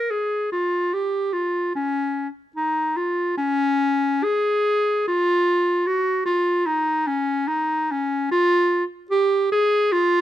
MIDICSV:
0, 0, Header, 1, 2, 480
1, 0, Start_track
1, 0, Key_signature, -4, "minor"
1, 0, Tempo, 818554
1, 1026, Time_signature, 4, 2, 24, 8
1, 1983, Tempo, 868307
1, 2463, Tempo, 805369
1, 3903, Tempo, 820793
1, 5976, End_track
2, 0, Start_track
2, 0, Title_t, "Clarinet"
2, 0, Program_c, 0, 71
2, 0, Note_on_c, 0, 70, 76
2, 61, Note_on_c, 0, 68, 75
2, 70, Note_off_c, 0, 70, 0
2, 301, Note_off_c, 0, 68, 0
2, 305, Note_on_c, 0, 65, 72
2, 549, Note_on_c, 0, 67, 76
2, 557, Note_off_c, 0, 65, 0
2, 780, Note_on_c, 0, 65, 73
2, 788, Note_off_c, 0, 67, 0
2, 1021, Note_off_c, 0, 65, 0
2, 1028, Note_on_c, 0, 61, 80
2, 1337, Note_off_c, 0, 61, 0
2, 1500, Note_on_c, 0, 63, 75
2, 1738, Note_on_c, 0, 65, 78
2, 1747, Note_off_c, 0, 63, 0
2, 1975, Note_off_c, 0, 65, 0
2, 1978, Note_on_c, 0, 61, 92
2, 2456, Note_on_c, 0, 68, 93
2, 2464, Note_off_c, 0, 61, 0
2, 2946, Note_off_c, 0, 68, 0
2, 2953, Note_on_c, 0, 65, 94
2, 3426, Note_on_c, 0, 66, 79
2, 3435, Note_off_c, 0, 65, 0
2, 3653, Note_off_c, 0, 66, 0
2, 3657, Note_on_c, 0, 65, 85
2, 3900, Note_on_c, 0, 63, 96
2, 3909, Note_off_c, 0, 65, 0
2, 4139, Note_on_c, 0, 61, 86
2, 4148, Note_off_c, 0, 63, 0
2, 4375, Note_on_c, 0, 63, 87
2, 4384, Note_off_c, 0, 61, 0
2, 4633, Note_on_c, 0, 61, 83
2, 4641, Note_off_c, 0, 63, 0
2, 4862, Note_off_c, 0, 61, 0
2, 4866, Note_on_c, 0, 65, 99
2, 5174, Note_off_c, 0, 65, 0
2, 5330, Note_on_c, 0, 67, 95
2, 5557, Note_off_c, 0, 67, 0
2, 5571, Note_on_c, 0, 68, 98
2, 5807, Note_on_c, 0, 65, 107
2, 5816, Note_off_c, 0, 68, 0
2, 5976, Note_off_c, 0, 65, 0
2, 5976, End_track
0, 0, End_of_file